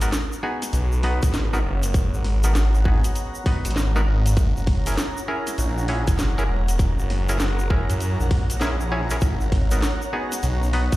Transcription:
Already playing: detuned saw bass G#1, ambient pad C#5 F#5
0.01 clav B3 D#4 F#4 A#4, closed hi-hat, shaker
0.12 snare, closed hi-hat, shaker
0.33 shaker
0.43 clav B3 D#4 F#4 G#4
0.62 snare, closed hi-hat, shaker
0.71 detuned saw bass B1, ambient pad A#5, closed hi-hat, shaker
0.92 shaker
1.03 clav B3 D#4 F#4 B4, open hi-hat
1.23 detuned saw bass G#1, kick, closed hi-hat, shaker
1.34 snare, closed hi-hat, shaker
1.53 clav B3 D#4 F#4 A#4, shaker
1.65 detuned saw bass F#1
1.83 closed hi-hat, shaker
1.94 kick, closed hi-hat, shaker
2.14 detuned saw bass G#1, shaker
2.24 snare, open hi-hat
2.44 clav B3 D#4 F#4 A#4, closed hi-hat, shaker
2.55 detuned saw bass G#1, snare, closed hi-hat, shaker
2.74 shaker
2.85 clav B3 D#4 F#4 G#4, kick
3.04 closed hi-hat, shaker
3.15 closed hi-hat, shaker
3.35 shaker
3.46 clav B3 D#4 F#4 B4, kick, open hi-hat
3.65 detuned saw bass G#1, closed hi-hat, shaker
3.71 closed hi-hat
3.76 snare, shaker
3.96 clav B3 D#4 F#4 A#4, shaker
4.07 detuned saw bass G#1
4.26 closed hi-hat, shaker
4.37 detuned saw bass F#1, kick, closed hi-hat, shaker
4.56 detuned saw bass F#1, shaker
4.67 kick, snare, open hi-hat
4.86 clav C#4 E4 G#4 A#4, closed hi-hat, shaker
4.88 closed hi-hat
4.92 closed hi-hat
4.94 closed hi-hat
4.95 snare, closed hi-hat
4.98 closed hi-hat, shaker
5.17 shaker
5.28 clav C#4 E4 G#4 A#4
5.47 snare, closed hi-hat, shaker
5.58 detuned saw bass A#1, closed hi-hat, shaker
5.78 shaker
5.88 clav C#4 E4 G#4 C#5, open hi-hat
6.07 detuned saw bass F#1, kick, closed hi-hat, shaker
6.19 snare, closed hi-hat, shaker
6.38 clav C#4 E4 G#4 A#4, shaker
6.49 detuned saw bass E1
6.68 closed hi-hat, shaker
6.79 kick, closed hi-hat, shaker
6.99 detuned saw bass F#1, shaker
7.10 snare, open hi-hat
7.29 clav C#4 E4 G#4 A#4, closed hi-hat, shaker
7.40 detuned saw bass F#1, snare, closed hi-hat, shaker
7.59 shaker
7.70 clav C#4 E4 G#4 A#4, kick
7.90 detuned saw bass F#2, closed hi-hat, shaker
8.00 closed hi-hat, shaker
8.20 detuned saw bass A#1, shaker
8.31 kick, open hi-hat
8.50 closed hi-hat, shaker
8.61 clav C#4 E4 G#4 A#4, snare, closed hi-hat, shaker
8.80 shaker
8.92 clav C#4 E4 G#4 C#5
9.10 clav C#4 E4 G#4 A#4, closed hi-hat, shaker
9.21 detuned saw bass G#1, kick, closed hi-hat, shaker
9.41 detuned saw bass G#1, shaker
9.52 kick, snare, open hi-hat
9.71 clav B3 D#4 F#4 A#4, closed hi-hat, shaker
9.82 snare, closed hi-hat, shaker
10.02 shaker
10.13 clav B3 D#4 F#4 G#4
10.32 snare, closed hi-hat, shaker
10.43 detuned saw bass B1, closed hi-hat, shaker
10.63 shaker
10.73 clav B3 D#4 F#4 B4, open hi-hat
10.92 detuned saw bass G#1, kick, closed hi-hat, shaker

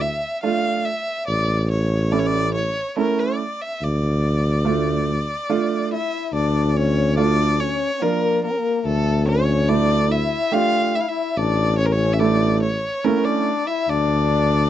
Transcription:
Already playing: tuba D2
0.01 violin E5
0.43 upright piano A3 D4 F4, violin F5
0.85 violin E5
1.28 tuba A1, violin D5
1.71 violin C#5
2.12 upright piano A3 C#4 E4, violin D5
2.19 violin C#5
2.26 violin D5
2.55 violin C#5
2.96 upright piano A3 C#4 E4, violin A#4
3.20 violin D5
3.62 violin E5
3.82 tuba D2, violin D5
4.64 upright piano A3 D4 F4
5.49 upright piano A3 D4 F4
5.91 trombone E4, violin E5
6.33 tuba D2, trombone D4, violin D5
6.69 violin D5
6.75 trombone C#4, violin C#5
7.16 upright piano A3 D4 F4, trombone D4, violin D5
7.60 trombone C#4, violin C#5
7.94 trombone C#4
8.00 upright piano F3 D4 F4, trombone A#3, violin A#4
8.44 trombone A#3, violin A#4
8.51 trombone C#4
8.58 trombone A#3
8.85 tuba D2, trombone A3, violin A4
9.27 trombone C#4, violin C#5
9.69 upright piano A3 D4 E4, trombone D4, violin D5
10.11 trombone E4, violin E5
10.52 upright piano A3 D4 G4, trombone F4, violin F5
10.96 trombone E4, violin E5
11.01 violin F5
11.08 trombone E4, violin E5
11.37 tuba A1, trombone D4, violin D5
11.78 trombone C#4, violin C#5
11.86 violin A#4
11.93 trombone C#4, violin C#5
12.14 violin E5
12.19 upright piano A3 E4, trombone D4, violin D5
12.63 violin C#5
13.04 upright piano A3 C#4 E4, trombone A#3, violin A#4
13.19 trombone E4
13.25 trombone D4, violin D5
13.67 trombone E4, violin E5
13.89 tuba D2, trombone D4, violin D5

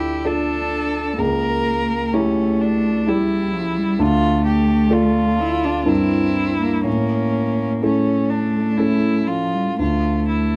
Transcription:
Already playing: grand piano D2 D4 F4 A4, cello E4, violin G4
0.25 grand piano D4 F4 A4, cello D4, violin A4
1.18 grand piano C#2, cello A#3, violin A#4
2.13 cello A3, violin C#4, grand piano E4 G4
2.61 violin D4
3.07 cello G3, grand piano E4 G4, violin E4
3.54 cello F3
3.78 cello G3
3.99 grand piano D2, cello A3, violin F4
4.46 violin G4
4.90 grand piano D4 F4 A4, violin F4
5.41 cello E4
5.65 cello D4
5.86 grand piano G2 E4 A#4, cello C4, violin E4
6.62 cello A#3
6.84 grand piano A2, cello A#3, violin C#4
7.82 cello A3, grand piano C#4 E4 A4, violin C#4
8.30 violin D4
8.77 grand piano C#4 E4 A4, violin E4
9.28 cello F3, violin F4
9.54 cello G3
9.79 grand piano D2, cello A3, violin F4
10.29 violin E4

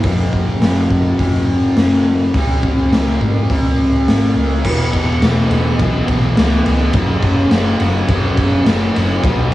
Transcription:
0.03 picked electric bass F#1, distorted electric guitar F#2 C#3 F#3, kick, open hi-hat
0.32 picked electric bass F#1, kick
0.62 picked electric bass F#1, snare, open hi-hat
0.90 picked electric bass F#1, kick
1.19 picked electric bass F#1, distorted electric guitar F#2 C#3 F#3, kick, open hi-hat
1.77 picked electric bass F#1, snare, open hi-hat
2.34 picked electric bass C#2, distorted electric guitar C#3 G#3 C#4, kick, open hi-hat
2.63 picked electric bass C#2, kick
2.92 picked electric bass C#2, snare, open hi-hat
3.21 picked electric bass G#2, kick
3.50 picked electric bass C#2, distorted electric guitar C#3 G#3 C#4, kick, open hi-hat
3.78 picked electric bass C#2
4.07 picked electric bass G#1, snare, open hi-hat
4.35 picked electric bass C#2
4.64 picked electric bass E1, distorted electric guitar E2 B2 E3, kick, crash
4.93 picked electric bass E1, distorted electric guitar B2 E3, kick, ride
5.20 picked electric bass E1, distorted electric guitar E2, snare, ride
5.24 distorted electric guitar B2 E3
5.49 picked electric bass E1, distorted electric guitar E3, ride
5.54 distorted electric guitar B2
5.79 picked electric bass B1, distorted electric guitar E2, kick, ride
5.83 distorted electric guitar B2 E3
6.08 picked electric bass B1, distorted electric guitar E3, kick, ride
6.13 distorted electric guitar B2
6.37 picked electric bass C#2, distorted electric guitar E2, snare, ride
6.41 distorted electric guitar B2 E3
6.66 picked electric bass C#2, distorted electric guitar B2 E3, ride
6.93 picked electric bass F#1, distorted electric guitar F#2 C#3, kick, ride
6.98 distorted electric guitar F#3
7.22 picked electric bass F#1, distorted electric guitar C#3 F#3, kick, ride
7.51 picked electric bass F#1, distorted electric guitar F#2 C#3, snare, ride
7.55 distorted electric guitar F#3
7.80 picked electric bass F#1, distorted electric guitar F#3, ride
7.84 distorted electric guitar C#3
8.08 picked electric bass F#1, distorted electric guitar F#2 C#3 F#3, kick, ride
8.37 picked electric bass F#1, distorted electric guitar C#3 F#3, kick, ride
8.66 picked electric bass F#1, distorted electric guitar F#2 C#3 F#3, snare, ride
8.94 picked electric bass F#1, distorted electric guitar C#3 F#3, snare, ride
9.23 picked electric bass B1, distorted electric guitar B2 F#3 B3, kick, ride

